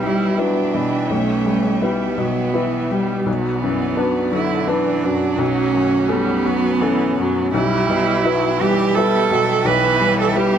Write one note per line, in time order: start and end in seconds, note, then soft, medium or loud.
0.00 1.07 B1 soft
0.00 0.74 B2 soft
0.00 0.41 G3 soft
0.00 0.60 G3 soft
0.00 3.24 B3 soft
0.00 0.38 E4 soft
0.00 0.41 E4 soft
0.00 0.38 B4 soft
0.00 3.24 E5 soft
0.00 3.23 G5 soft
0.38 0.76 F#3 soft
0.38 1.10 D4 medium
0.38 0.71 E4 soft
0.38 0.71 B4 soft
0.74 1.32 B2 soft
0.74 1.12 E3 soft
1.09 3.23 B1 soft
1.09 1.84 A3 soft
1.09 1.84 C#4 medium
1.46 2.04 G3 soft
1.82 2.20 G3 soft
1.82 3.27 B3 medium
1.82 2.15 E4 soft
1.82 2.15 B4 soft
2.18 2.76 B2 soft
2.18 2.56 F#3 soft
2.54 2.93 E3 soft
2.54 2.87 E4 soft
2.54 2.87 B4 soft
2.91 3.27 G3 soft
2.91 3.29 G3 soft
3.26 5.35 B1 soft
3.26 3.63 F#3 soft
3.26 5.36 B3 soft
3.26 4.31 B3 medium
3.26 7.55 F#4 soft
3.26 5.40 D5 soft
3.62 4.19 F#2 soft
3.62 4.00 E3 soft
3.97 4.35 F#3 soft
3.97 4.29 D4 soft
3.97 4.29 B4 soft
4.31 4.71 D3 soft
4.31 4.89 F#3 soft
4.31 4.69 E4 medium
4.68 5.06 E3 soft
4.68 5.00 D4 soft
4.68 5.40 D4 medium
4.68 5.00 B4 soft
5.03 5.39 F#2 soft
5.03 6.12 F#3 medium
5.38 7.50 B1 soft
5.38 7.55 A3 soft
5.38 6.11 C#4 medium
5.38 7.55 C#5 soft
5.74 6.31 F#2 soft
6.08 6.48 G3 medium
6.08 7.53 B3 medium
6.08 6.41 C#4 soft
6.08 6.41 A4 soft
6.45 7.03 F#3 soft
6.45 6.83 F#3 medium
6.81 7.18 E3 medium
6.81 7.15 C#4 soft
6.81 7.15 A4 soft
7.18 7.55 F#2 soft
7.18 7.54 F#3 medium
7.54 9.61 B1 medium
7.54 8.27 G3 medium
7.54 10.58 B3 soft
7.54 8.62 E4 medium
7.54 10.58 E5 medium
7.54 10.58 G5 soft
7.89 8.46 B2 soft
8.25 8.63 F#3 medium
8.25 8.57 E4 soft
8.25 8.57 B4 soft
8.61 8.99 E3 medium
8.61 9.16 G3 soft
8.61 8.97 G4 medium
8.95 9.33 G3 medium
8.95 9.28 E4 soft
8.95 9.68 A4 medium
8.95 9.28 B4 soft
9.31 9.87 B2 soft
9.31 9.68 F#3 medium
9.65 10.58 B1 medium
9.65 10.38 E3 medium
9.65 10.19 B4 medium
10.00 10.57 G3 soft
10.20 10.38 A4 medium
10.36 10.58 G3 medium
10.36 10.58 E4 soft
10.36 10.58 G4 medium
10.36 10.58 B4 soft